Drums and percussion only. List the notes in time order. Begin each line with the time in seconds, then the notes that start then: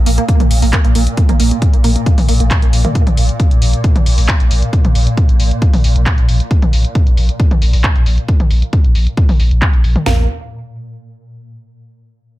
0.06 open hi-hat
0.18 closed hi-hat
0.29 kick, closed hi-hat
0.40 closed hi-hat, mid tom
0.51 open hi-hat
0.62 open hi-hat
0.73 kick, clap, closed hi-hat
0.85 closed hi-hat
0.95 open hi-hat
1.07 closed hi-hat
1.17 kick, closed hi-hat
1.29 closed hi-hat, mid tom
1.40 open hi-hat
1.51 closed hi-hat
1.62 kick, closed hi-hat
1.73 closed hi-hat
1.84 open hi-hat
1.96 closed hi-hat
2.06 kick, closed hi-hat
2.18 open hi-hat, mid tom
2.29 open hi-hat
2.40 closed hi-hat
2.51 kick, clap, closed hi-hat
2.62 closed hi-hat
2.73 open hi-hat
2.85 closed hi-hat, mid tom
2.95 kick, closed hi-hat
3.07 closed hi-hat, mid tom
3.17 open hi-hat
3.29 closed hi-hat
3.40 kick, closed hi-hat
3.51 closed hi-hat
3.62 open hi-hat
3.73 closed hi-hat
3.84 kick, closed hi-hat
3.96 closed hi-hat, mid tom
4.06 open hi-hat
4.18 open hi-hat
4.29 kick, clap, closed hi-hat
4.40 closed hi-hat
4.51 open hi-hat
4.62 closed hi-hat
4.73 kick, closed hi-hat
4.85 closed hi-hat, mid tom
4.95 open hi-hat
5.07 closed hi-hat
5.17 kick, closed hi-hat
5.29 closed hi-hat
5.40 open hi-hat
5.51 closed hi-hat
5.62 kick, closed hi-hat
5.74 open hi-hat, mid tom
5.84 open hi-hat
5.96 closed hi-hat
6.06 kick, clap, closed hi-hat
6.18 closed hi-hat
6.29 open hi-hat
6.40 closed hi-hat
6.51 kick, closed hi-hat
6.62 closed hi-hat, mid tom
6.73 open hi-hat
6.85 closed hi-hat
6.95 kick, closed hi-hat
7.07 closed hi-hat
7.17 open hi-hat
7.29 closed hi-hat
7.40 kick, closed hi-hat
7.51 closed hi-hat, mid tom
7.62 open hi-hat
7.73 open hi-hat
7.84 kick, clap, closed hi-hat
7.96 closed hi-hat
8.06 open hi-hat
8.18 closed hi-hat
8.28 kick, closed hi-hat
8.40 closed hi-hat, mid tom
8.51 open hi-hat
8.62 closed hi-hat
8.73 kick, closed hi-hat
8.84 closed hi-hat
8.95 open hi-hat
9.07 closed hi-hat
9.17 kick, closed hi-hat
9.29 open hi-hat, mid tom
9.40 open hi-hat
9.51 closed hi-hat
9.62 kick, clap, closed hi-hat
9.73 closed hi-hat
9.84 open hi-hat
9.96 closed hi-hat, mid tom
10.06 snare, floor tom